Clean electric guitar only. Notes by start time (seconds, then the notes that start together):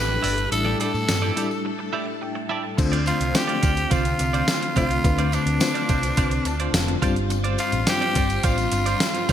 0.09 muted clean electric guitar stroke
0.23 E4 G4 D5
0.37 muted clean electric guitar stroke
0.51 muted clean electric guitar stroke
0.65 E4 G4 D5
0.79 E4 G4 D5
1.08 muted clean electric guitar stroke
1.22 E4 G4 D5
1.36 E4 G4 D5
1.51 muted clean electric guitar stroke
1.65 muted clean electric guitar stroke
1.79 muted clean electric guitar stroke
1.93 E4 G4 D5
2.07 muted clean electric guitar stroke
2.21 muted clean electric guitar stroke
2.35 muted clean electric guitar stroke
2.49 E4 G4 D5
2.64 muted clean electric guitar stroke
2.78 muted clean electric guitar stroke
2.92 F4 C5 D5
3.06 F4 C5 D5
3.20 muted clean electric guitar stroke
3.34 muted clean electric guitar stroke
3.48 F4 C5 D5
3.62 F4 C5 D5
3.91 F4 C5 D5
4.05 muted clean electric guitar stroke
4.20 muted clean electric guitar stroke
4.33 F4 C5 D5
4.62 muted clean electric guitar stroke
4.76 F4 C5 D5
4.91 muted clean electric guitar stroke
5.04 muted clean electric guitar stroke
5.18 F4 C5 D5
5.33 F4 C5 D5
5.47 muted clean electric guitar stroke
5.61 muted clean electric guitar stroke
5.74 F4 C5 D5
5.89 F4 C5 D5
6.03 muted clean electric guitar stroke
6.17 F4 C5 D5
6.31 muted clean electric guitar stroke
6.46 muted clean electric guitar stroke
6.60 F4 C5 D5
6.74 muted clean electric guitar stroke
6.88 muted clean electric guitar stroke
7.02 F4 C5 D5
7.16 muted clean electric guitar stroke
7.30 muted clean electric guitar stroke
7.44 F4 C5 D5
7.58 F4 C5 D5
7.87 muted clean electric guitar stroke
8.01 F4 C5 D5
8.15 F4 C5 D5
8.29 muted clean electric guitar stroke
8.44 F4 C5 D5
8.58 muted clean electric guitar stroke
8.72 muted clean electric guitar stroke
8.86 F4 C5 D5
9.15 muted clean electric guitar stroke
9.29 F4